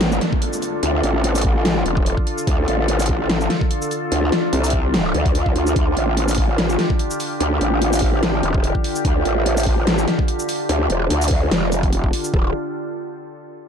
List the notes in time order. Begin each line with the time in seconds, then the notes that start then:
Already playing: A1 D3 D4 F4 A4, downlifter
0.01 snare, closed hi-hat
0.12 shaker
0.21 snare, closed hi-hat
0.33 kick
0.42 closed hi-hat
0.53 shaker
0.62 closed hi-hat, shaker
0.83 D2, closed hi-hat
1.03 A1, closed hi-hat
1.24 closed hi-hat
1.35 closed hi-hat, shaker
1.38 closed hi-hat
1.41 kick, closed hi-hat
1.65 snare, closed hi-hat
1.86 E1, closed hi-hat
1.97 kick
2.06 closed hi-hat
2.17 kick
2.27 closed hi-hat
2.38 shaker
2.47 D2, kick, closed hi-hat
2.68 A1, closed hi-hat
2.88 closed hi-hat
3.00 closed hi-hat, shaker
3.02 closed hi-hat
3.06 kick, closed hi-hat
3.30 snare, closed hi-hat
3.41 shaker
3.50 snare, closed hi-hat
3.61 kick
3.71 closed hi-hat
3.82 shaker
3.91 closed hi-hat, shaker
4.12 D2, closed hi-hat
4.32 snare, closed hi-hat
4.53 C2, closed hi-hat
4.64 closed hi-hat, shaker
4.66 closed hi-hat
4.70 kick, closed hi-hat
4.94 snare, closed hi-hat
5.14 D2, closed hi-hat
5.26 kick, closed hi-hat
5.35 closed hi-hat
5.46 kick
5.56 D2, closed hi-hat
5.67 shaker
5.76 D2 G4, kick, closed hi-hat
5.97 A1, closed hi-hat
6.17 closed hi-hat
6.28 closed hi-hat, shaker
6.31 closed hi-hat
6.35 kick, closed hi-hat, open hi-hat
6.58 snare, closed hi-hat
6.69 shaker
6.79 snare, closed hi-hat
6.90 kick
6.99 closed hi-hat
7.11 shaker
7.20 open hi-hat, shaker
7.40 D2, closed hi-hat
7.61 A1, closed hi-hat
7.82 closed hi-hat
7.93 closed hi-hat, shaker
7.95 closed hi-hat
7.99 kick, closed hi-hat, open hi-hat
8.23 snare, closed hi-hat
8.43 E1, closed hi-hat
8.54 kick
8.64 closed hi-hat
8.75 kick
8.84 open hi-hat
8.96 shaker
9.05 D2, kick, closed hi-hat
9.25 A1, closed hi-hat
9.46 closed hi-hat
9.57 closed hi-hat, shaker
9.60 closed hi-hat
9.63 kick, closed hi-hat, open hi-hat
9.87 snare, closed hi-hat
9.98 shaker
10.08 snare, closed hi-hat
10.19 kick
10.28 closed hi-hat
10.39 shaker
10.49 open hi-hat, shaker
10.69 D2, closed hi-hat
10.90 E1, closed hi-hat
11.10 D2, closed hi-hat
11.22 closed hi-hat, shaker
11.24 closed hi-hat
11.28 D2, kick, closed hi-hat, open hi-hat
11.51 F1, snare, closed hi-hat
11.72 closed hi-hat, shaker
11.83 kick, closed hi-hat
11.93 closed hi-hat
12.04 kick
12.13 open hi-hat
12.24 shaker
12.34 D1, kick